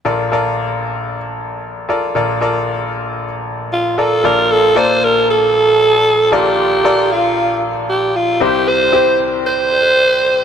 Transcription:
X:1
M:4/4
L:1/8
Q:1/4=115
K:Bblyd
V:1 name="Alto saxophone"
z8 | z6 F A | B A c B A4 | G3 F2 z G F |
G c2 z c4 |]
V:2 name="Grand piano"
[FABd] [FABd]3 z3 [FABd] | [FABd] [FABd]3 z3 [FABd] | [FABd]2 [B,FAd]3 z3 | [FABd]2 [FABd]3 z3 |
[CEGc]2 [CEGc]3 z3 |]
V:3 name="Grand piano" clef=bass
[B,,,B,,]8 | [B,,,B,,]8 | [B,,,B,,]8 | [B,,,B,,]8 |
[C,,C,]8 |]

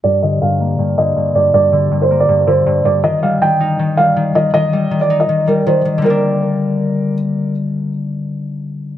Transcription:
X:1
M:4/4
L:1/16
Q:1/4=160
K:Gm
V:1 name="Felt piano"
d2 e2 f6 e4 d2 | d4- d c2 d3 c4 d2 | e2 f2 g6 f4 e2 | e4- e d2 e3 B2 c2 z2 |
B12 z4 | z16 |]
V:2 name="Harp" clef=bass
G,,2 D,2 G,,2 B,2 G,,2 D,2 G,,2 G,,2 | G,,2 D,2 G,,2 B,2 G,,2 D,2 G,,2 G,,2 | E,2 G,2 E,2 E2 E,2 G,2 E,2 E,2 | E,2 G,2 E,2 E2 E,2 G,2 E,2 E,2 |
[D,G,B,D]16- | [D,G,B,D]16 |]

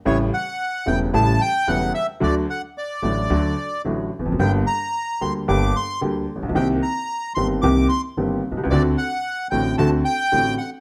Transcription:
X:1
M:4/4
L:1/16
Q:1/4=111
K:Dphr
V:1 name="Bandoneon"
^c2 ^f4 g2 a2 g2 f2 =e2 | d2 ^f2 d8 z4 | g2 b4 c'2 d'2 c'2 z4 | g2 b4 c'2 d'2 c'2 z4 |
d2 ^f4 g2 a2 g4 f2 |]
V:2 name="Upright piano" clef=bass
[A,,,A,,^C,G,A,=E]2 z4 [=E,,,=E,,C,G,A,E]2 [A,,,A,,C,G,A,E]2 z2 [E,,,E,,C,G,A,E]2 z2 | [D,,D,^F,A,^F]2 z4 [A,,,A,,D,F,A,F]2 [D,,D,F,A,F]2 z2 [A,,,A,,D,F,A,F]2 z/2 =E,,/2 =F,,/2 ^F,,/2 | [G,,,G,,D,G,B,G]2 z4 [D,,D,G,B,G]2 [G,,,G,,D,G,B,G]2 z2 [D,,D,G,B,G]2 z/2 A,,,/2 B,,,/2 =B,,,/2 | [C,,C,E,B,CG]2 z4 [G,,,G,,E,B,CG]2 [C,,C,E,B,CG]2 z2 [G,,,G,,E,B,CG]2 z/2 =B,,,/2 C,,/2 ^C,,/2 |
[D,,D,A,C^F]2 z4 [A,,,A,,D,A,CF]2 [D,,D,A,CF]2 z2 [A,,,A,,D,A,CF]2 z2 |]
V:3 name="Upright bass" clef=bass
A,,,3/2 z4 z/2 =E,,,3/2 z/2 A,,,3/2 z2 z/2 E,,,3/2 z2 z/2 | D,,3/2 z4 z/2 A,,,3/2 z/2 D,,3/2 z2 z/2 A,,,3/2 z =E,,,/2 F,,,/2 ^F,,,/2 | G,,,3/2 z4 z/2 D,,3/2 z/2 G,,,3/2 z2 z/2 D,,3/2 z A,,,/2 B,,,/2 =B,,,/2 | C,,3/2 z4 z/2 G,,,3/2 z/2 C,,3/2 z2 z/2 G,,,3/2 z =B,,,/2 C,,/2 ^C,,/2 |
D,,3/2 z4 z/2 A,,,3/2 z/2 D,,3/2 z2 z/2 A,,,3/2 z2 z/2 |]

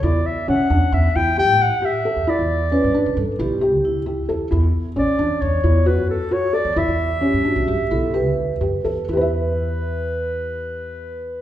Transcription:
X:1
M:5/4
L:1/16
Q:1/4=134
K:Edor
V:1 name="Clarinet"
d2 e2 f4 e2 g2 g2 f2 e4 | d8 z12 | z4 d4 c4 B2 A2 c2 d2 | e16 z4 |
B16- B4 |]
V:2 name="Vibraphone"
z16 z4 | z4 B2 B2 A2 G4 E6- | E2 z16 z2 | z4 G2 F2 G2 A2 B8 |
B16- B4 |]
V:3 name="Felt piano"
E4 C2 D4 E2 G4 G2 A2 | E4 C2 D4 E2 G4 G2 A2 | E4 C2 D4 E2 F4 F2 A2 | E4 C2 D4 E2 G4 G2 A2 |
[EGBe]16- [EGBe]4 |]
V:4 name="Upright bass" clef=bass
E,,2 z2 B,,, z E,, z E,,2 E,,3 A,,2 z4 E,, | z E,,4 G,, z B,,, G,, z B,,,3 D,,4- D,, E,, z | E,,2 z2 A,,, z E,, z E,,2 E,,3 F,,2 z4 E,, | E,, E,,4 G,, z B,,, G,, z B,,,3 D,,3 F,,2 E,,2 |
E,,16- E,,4 |]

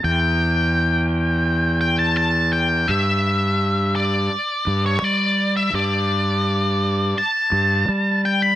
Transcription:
X:1
M:4/4
L:1/16
Q:1/4=84
K:Edor
V:1 name="Lead electric guitar"
g8- g2 g a a2 g2 | e6 d4- d c d3 e | d8 a6 g b |]
V:2 name="Fingered electric bass" clef=bass
E,,16 | G,,8 z2 G,,2 G,4 | G,,8 z2 G,,2 G,4 |]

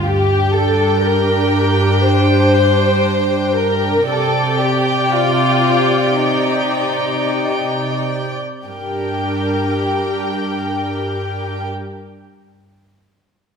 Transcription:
X:1
M:4/4
L:1/8
Q:1/4=53
K:Gm
V:1 name="Violin section"
g8 | g8 | g8 |]
V:2 name="Violin section"
G A B2 c3 B | A G F2 E3 z | G8 |]
V:3 name="Viola section"
[DG]8 | [Gd]8 | [DB]8 |]
V:4 name="Cello section" clef=bass
G,,8 | C,8 | G,,8 |]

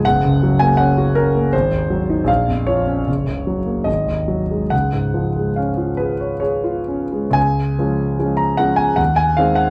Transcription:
X:1
M:3/4
L:1/16
Q:1/4=75
K:Db
V:1 name="Grand piano"
g3 a g2 B2 c4 | f2 d6 e4 | g4 f2 _c2 d4 | a4- a b g a g a f g |]
V:2 name="Grand piano" clef=bass
G,,, D,, G, B, D G D B, A,,, E,, G, E | B,,, F,, F, D G,,, D,, G, B, A,,, E,, G, A, | D,, A,, F, A, D F A d A F D A, | D,,2 [F,A,D]2 [F,A,D]2 [F,A,D]2 E,,2 [E,A,C]2 |]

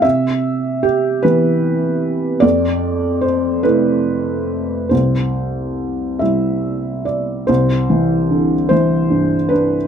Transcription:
X:1
M:6/8
L:1/8
Q:3/8=49
K:C
V:1 name="Felt piano"
e2 G B3 | d2 c B3 | c3 e2 d | c3 c2 B |]
V:2 name="Felt piano" clef=bass
C,3 [E,B,G]3 | F,,3 [C,A,E]3 | C,,3 [C,G,E]3 | C,, E, D, E, G,, D |]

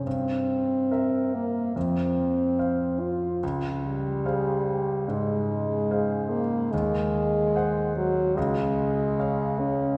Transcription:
X:1
M:4/4
L:1/8
Q:1/4=72
K:Dblyd
V:1 name="Grand piano"
G,,2 [B=e]2 F,,2 [cf]2 | D,,2 [Acf]2 A,,2 [Acf]2 | E,,2 [c_g]2 D,,2 [df]2 |]
V:2 name="French horn"
C3 B, C3 F | z G,3 A,3 B, | A,3 _G, A,3 D |]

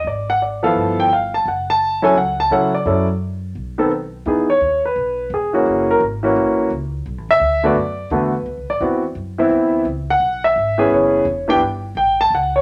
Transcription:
X:1
M:4/4
L:1/8
Q:"Swing" 1/4=171
K:F#m
V:1 name="Grand piano"
d f d ^e2 =g =f a | f a2 g f a f d- | d z6 z | z c2 B3 G2- |
G ^A z6 | z e2 d3 B2- | B d z6 | z f2 e3 c2- |
c =g z2 g a f c |]
V:2 name="Grand piano"
z3 [E,^E,B,A]3 z2 | z3 [F,CEA] z2 [F,CEA] z | [F,CEA] z4 [^D,B,=CA] z2 | [E,B,^DG] z6 [E,^A,CF]- |
[E,^A,CF]2 z [E,A,CF]3 z2 | z3 [D,A,B,F] z2 [D,A,B,F] z | z2 [E,B,=CF] z2 [E,B,CE]3 | z4 z [E,B,CG]3 |
z [E,B,D=G] z6 |]
V:3 name="Upright bass" clef=bass
G,,,4 =G,,,4 | F,,,4 C,,2 C,2 | F,,4 B,,,4 | E,,2 ^D,,2 B,,,2 E,,,2 |
F,,,2 G,,,2 ^A,,,2 C,,2 | (3B,,, A,,, F,,, D,,2 F,,2 E,,2 | (3D,, =C,, A,,, E,,2 F,,2 D,,2 | C,,2 B,,,2 G,,,2 F,,,2 |
E,,,2 =G,,,2 A,,,2 C,,2 |]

